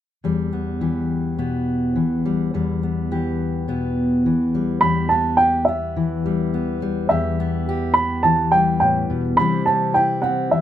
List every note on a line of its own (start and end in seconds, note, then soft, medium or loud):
0.24 2.54 E2 soft
0.24 2.25 G3 soft
0.53 1.38 B3 soft
0.81 1.95 E3 soft
0.81 3.11 G4 soft
1.38 1.96 B2 soft
1.38 2.82 B3 soft
1.96 3.11 E3 soft
2.25 2.54 G3 soft
2.54 4.81 E2 soft
2.54 4.53 G3 soft
2.83 3.68 B3 soft
3.11 4.25 E3 soft
3.11 4.79 G4 soft
3.68 4.25 B2 soft
3.68 5.10 B3 soft
4.26 4.79 E3 soft
4.55 6.24 G3 soft
4.81 7.09 E2 medium
4.81 5.40 G4 soft
4.81 5.11 B5 medium
5.09 5.68 B3 soft
5.09 5.39 A5 medium
5.37 7.11 G4 soft
5.37 5.68 G5 medium
5.65 6.53 B3 soft
5.65 6.76 E5 medium
5.96 8.24 E3 soft
6.26 6.82 G3 soft
6.54 7.39 B3 soft
6.82 8.53 G3 soft
7.09 9.38 E2 medium
7.09 7.68 G4 soft
7.09 7.91 E5 medium
7.40 7.96 B3 soft
7.69 9.41 G4 medium
7.94 9.39 B3 soft
7.94 8.21 B5 medium
8.23 9.39 E3 soft
8.23 8.53 A5 medium
8.52 9.39 G3 soft
8.52 8.79 G5 medium
8.80 9.09 A2 soft
8.80 9.20 G5 medium
9.10 9.38 B2 soft
9.37 10.52 C3 medium
9.37 10.51 E3 soft
9.37 10.61 G3 soft
9.37 9.67 C4 soft
9.37 9.67 B5 medium
9.41 9.95 E4 medium
9.66 10.23 C4 soft
9.66 9.95 A5 medium
9.94 10.61 E4 medium
9.94 10.24 G5 medium
10.22 10.61 C4 soft
10.22 10.52 F#5 medium
10.51 10.61 E3 medium
10.51 10.61 E5 medium